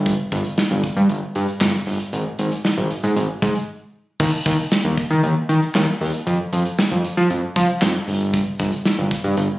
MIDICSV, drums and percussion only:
0, 0, Header, 1, 2, 480
1, 0, Start_track
1, 0, Tempo, 517241
1, 57, Time_signature, 4, 2, 24, 8
1, 8899, End_track
2, 0, Start_track
2, 0, Title_t, "Drums"
2, 57, Note_on_c, 9, 36, 115
2, 57, Note_on_c, 9, 42, 82
2, 149, Note_off_c, 9, 36, 0
2, 149, Note_off_c, 9, 42, 0
2, 296, Note_on_c, 9, 42, 71
2, 297, Note_on_c, 9, 36, 97
2, 389, Note_off_c, 9, 42, 0
2, 390, Note_off_c, 9, 36, 0
2, 415, Note_on_c, 9, 42, 56
2, 507, Note_off_c, 9, 42, 0
2, 535, Note_on_c, 9, 42, 77
2, 537, Note_on_c, 9, 38, 108
2, 628, Note_off_c, 9, 42, 0
2, 629, Note_off_c, 9, 38, 0
2, 776, Note_on_c, 9, 36, 91
2, 777, Note_on_c, 9, 42, 69
2, 869, Note_off_c, 9, 36, 0
2, 870, Note_off_c, 9, 42, 0
2, 897, Note_on_c, 9, 42, 59
2, 990, Note_off_c, 9, 42, 0
2, 1016, Note_on_c, 9, 42, 72
2, 1108, Note_off_c, 9, 42, 0
2, 1255, Note_on_c, 9, 42, 81
2, 1347, Note_off_c, 9, 42, 0
2, 1376, Note_on_c, 9, 42, 51
2, 1469, Note_off_c, 9, 42, 0
2, 1494, Note_on_c, 9, 38, 117
2, 1494, Note_on_c, 9, 39, 94
2, 1495, Note_on_c, 9, 42, 72
2, 1587, Note_off_c, 9, 38, 0
2, 1587, Note_off_c, 9, 39, 0
2, 1588, Note_off_c, 9, 42, 0
2, 1736, Note_on_c, 9, 46, 71
2, 1829, Note_off_c, 9, 46, 0
2, 1856, Note_on_c, 9, 42, 50
2, 1949, Note_off_c, 9, 42, 0
2, 1976, Note_on_c, 9, 42, 79
2, 2068, Note_off_c, 9, 42, 0
2, 2215, Note_on_c, 9, 42, 74
2, 2308, Note_off_c, 9, 42, 0
2, 2334, Note_on_c, 9, 42, 55
2, 2427, Note_off_c, 9, 42, 0
2, 2455, Note_on_c, 9, 42, 74
2, 2457, Note_on_c, 9, 38, 105
2, 2548, Note_off_c, 9, 42, 0
2, 2550, Note_off_c, 9, 38, 0
2, 2697, Note_on_c, 9, 42, 67
2, 2789, Note_off_c, 9, 42, 0
2, 2817, Note_on_c, 9, 42, 60
2, 2910, Note_off_c, 9, 42, 0
2, 2937, Note_on_c, 9, 42, 71
2, 3029, Note_off_c, 9, 42, 0
2, 3176, Note_on_c, 9, 42, 76
2, 3177, Note_on_c, 9, 36, 91
2, 3268, Note_off_c, 9, 42, 0
2, 3269, Note_off_c, 9, 36, 0
2, 3297, Note_on_c, 9, 42, 49
2, 3390, Note_off_c, 9, 42, 0
2, 3897, Note_on_c, 9, 36, 114
2, 3897, Note_on_c, 9, 49, 97
2, 3990, Note_off_c, 9, 36, 0
2, 3990, Note_off_c, 9, 49, 0
2, 4137, Note_on_c, 9, 42, 76
2, 4138, Note_on_c, 9, 36, 102
2, 4230, Note_off_c, 9, 42, 0
2, 4231, Note_off_c, 9, 36, 0
2, 4255, Note_on_c, 9, 42, 55
2, 4348, Note_off_c, 9, 42, 0
2, 4376, Note_on_c, 9, 42, 76
2, 4378, Note_on_c, 9, 38, 111
2, 4469, Note_off_c, 9, 42, 0
2, 4470, Note_off_c, 9, 38, 0
2, 4616, Note_on_c, 9, 36, 90
2, 4617, Note_on_c, 9, 42, 71
2, 4709, Note_off_c, 9, 36, 0
2, 4710, Note_off_c, 9, 42, 0
2, 4737, Note_on_c, 9, 42, 60
2, 4830, Note_off_c, 9, 42, 0
2, 4857, Note_on_c, 9, 42, 69
2, 4950, Note_off_c, 9, 42, 0
2, 5097, Note_on_c, 9, 42, 79
2, 5190, Note_off_c, 9, 42, 0
2, 5217, Note_on_c, 9, 42, 51
2, 5310, Note_off_c, 9, 42, 0
2, 5335, Note_on_c, 9, 38, 115
2, 5335, Note_on_c, 9, 39, 94
2, 5336, Note_on_c, 9, 42, 72
2, 5428, Note_off_c, 9, 38, 0
2, 5428, Note_off_c, 9, 39, 0
2, 5429, Note_off_c, 9, 42, 0
2, 5577, Note_on_c, 9, 46, 70
2, 5670, Note_off_c, 9, 46, 0
2, 5698, Note_on_c, 9, 42, 51
2, 5791, Note_off_c, 9, 42, 0
2, 5817, Note_on_c, 9, 42, 80
2, 5910, Note_off_c, 9, 42, 0
2, 6057, Note_on_c, 9, 42, 72
2, 6150, Note_off_c, 9, 42, 0
2, 6175, Note_on_c, 9, 42, 57
2, 6267, Note_off_c, 9, 42, 0
2, 6296, Note_on_c, 9, 42, 79
2, 6297, Note_on_c, 9, 38, 105
2, 6388, Note_off_c, 9, 42, 0
2, 6390, Note_off_c, 9, 38, 0
2, 6537, Note_on_c, 9, 42, 70
2, 6630, Note_off_c, 9, 42, 0
2, 6657, Note_on_c, 9, 42, 61
2, 6750, Note_off_c, 9, 42, 0
2, 6777, Note_on_c, 9, 42, 68
2, 6869, Note_off_c, 9, 42, 0
2, 7016, Note_on_c, 9, 42, 78
2, 7017, Note_on_c, 9, 36, 94
2, 7109, Note_off_c, 9, 42, 0
2, 7110, Note_off_c, 9, 36, 0
2, 7137, Note_on_c, 9, 42, 52
2, 7230, Note_off_c, 9, 42, 0
2, 7255, Note_on_c, 9, 38, 116
2, 7255, Note_on_c, 9, 39, 96
2, 7256, Note_on_c, 9, 42, 73
2, 7348, Note_off_c, 9, 38, 0
2, 7348, Note_off_c, 9, 39, 0
2, 7349, Note_off_c, 9, 42, 0
2, 7497, Note_on_c, 9, 46, 72
2, 7590, Note_off_c, 9, 46, 0
2, 7618, Note_on_c, 9, 42, 51
2, 7711, Note_off_c, 9, 42, 0
2, 7736, Note_on_c, 9, 42, 80
2, 7737, Note_on_c, 9, 36, 116
2, 7829, Note_off_c, 9, 42, 0
2, 7830, Note_off_c, 9, 36, 0
2, 7976, Note_on_c, 9, 42, 73
2, 7978, Note_on_c, 9, 36, 101
2, 8069, Note_off_c, 9, 42, 0
2, 8071, Note_off_c, 9, 36, 0
2, 8094, Note_on_c, 9, 42, 55
2, 8187, Note_off_c, 9, 42, 0
2, 8215, Note_on_c, 9, 42, 77
2, 8217, Note_on_c, 9, 38, 106
2, 8308, Note_off_c, 9, 42, 0
2, 8310, Note_off_c, 9, 38, 0
2, 8456, Note_on_c, 9, 36, 87
2, 8457, Note_on_c, 9, 42, 67
2, 8548, Note_off_c, 9, 36, 0
2, 8549, Note_off_c, 9, 42, 0
2, 8576, Note_on_c, 9, 42, 62
2, 8669, Note_off_c, 9, 42, 0
2, 8695, Note_on_c, 9, 42, 69
2, 8788, Note_off_c, 9, 42, 0
2, 8899, End_track
0, 0, End_of_file